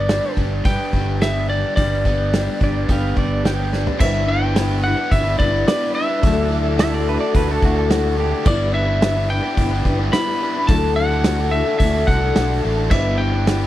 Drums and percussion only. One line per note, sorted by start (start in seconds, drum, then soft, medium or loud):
0.09 snare loud
0.09 open hi-hat soft
0.37 kick medium
0.65 kick loud
0.65 open hi-hat soft
0.93 kick medium
1.22 snare medium
1.22 open hi-hat medium
1.77 kick loud
1.77 open hi-hat medium
2.05 kick medium
2.33 snare loud
2.33 open hi-hat medium
2.61 kick medium
2.89 kick loud
2.89 open hi-hat soft
3.17 kick medium
3.45 snare loud
3.45 open hi-hat medium
3.73 snare medium
3.87 floor tom medium
4.00 kick loud
4.00 crash loud
4.56 snare loud
4.56 open hi-hat medium
5.12 kick medium
5.12 open hi-hat medium
5.40 kick medium
5.68 snare loud
5.68 open hi-hat medium
6.23 kick loud
6.23 open hi-hat medium
6.79 snare loud
6.79 open hi-hat medium
7.34 kick medium
7.34 open hi-hat medium
7.62 kick medium
7.90 snare loud
7.90 open hi-hat medium
8.46 kick loud
8.46 crash loud
9.02 snare loud
9.02 open hi-hat medium
9.57 kick medium
9.57 open hi-hat medium
9.85 kick medium
10.13 snare loud
10.13 open hi-hat medium
10.68 kick loud
10.68 open hi-hat medium
11.24 snare loud
11.24 open hi-hat medium
11.80 kick medium
11.80 open hi-hat medium
12.08 kick medium
12.36 snare loud
12.36 open hi-hat medium
12.91 kick loud
12.91 crash loud
13.47 snare loud
13.47 open hi-hat medium